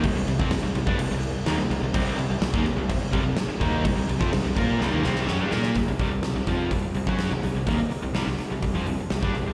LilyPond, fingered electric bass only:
\new Staff \with { instrumentName = "Fingered electric bass" } { \clef bass \time 4/4 \key c \minor \tempo 4 = 126 c,16 c,16 c,16 f,16 c,16 c,16 c,16 g,16 c,16 c,8 r16 ees,16 c,16 c,16 c,16 | c,8 c,16 c,16 c,16 ees,16 c,16 c,16 c,16 r16 c,16 c,16 r8 ees,8 | c,16 c,16 c,16 f,16 c,16 c,16 bes,8 c,16 ees,16 c,8 fis,16 g,16 bes,8 | c,16 c,16 c,16 c,8 c,16 f,8 c,16 r16 c,16 fis,8 c,16 c,16 c,16 |
ees,16 r8 c,16 c,16 c,16 r16 c,16 c,16 f,16 c,16 r16 c,16 g,16 c,16 c,16 | }